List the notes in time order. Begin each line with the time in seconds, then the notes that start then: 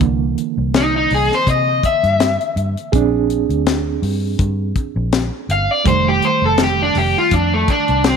0.00 C2 D3 E3 A#3, kick, closed hi-hat
0.38 closed hi-hat
0.58 C2
0.74 D#4, snare, closed hi-hat
0.96 D#4
1.10 C2, open hi-hat
1.14 G#4
1.32 C5, snare
1.47 C3 D#5, kick, closed hi-hat
1.83 E5, kick, closed hi-hat
2.03 G2, closed hi-hat
2.20 snare, closed hi-hat
2.41 closed hi-hat
2.56 G2, closed hi-hat
2.77 closed hi-hat
2.92 A#1 C4 D4 G#4, kick, closed hi-hat
3.30 closed hi-hat
3.49 D2, closed hi-hat
3.66 snare, closed hi-hat
4.02 G2, open hi-hat
4.39 G2, kick, closed hi-hat
4.75 kick, closed hi-hat
4.96 A#1
5.12 snare, closed hi-hat
5.49 G1 F5, closed hi-hat
5.71 D5
5.84 F1 D#3 G3 A3 C5, kick, closed hi-hat
6.09 G4
6.22 C5, closed hi-hat
6.42 F1 A4
6.58 snare, closed hi-hat
6.63 G4
6.82 D4
6.95 F1 G4, open hi-hat
7.18 F4
7.31 F2 D4, kick, closed hi-hat
7.54 A3
7.68 D4, kick, closed hi-hat
7.88 C2, closed hi-hat
8.04 snare, closed hi-hat
8.08 C4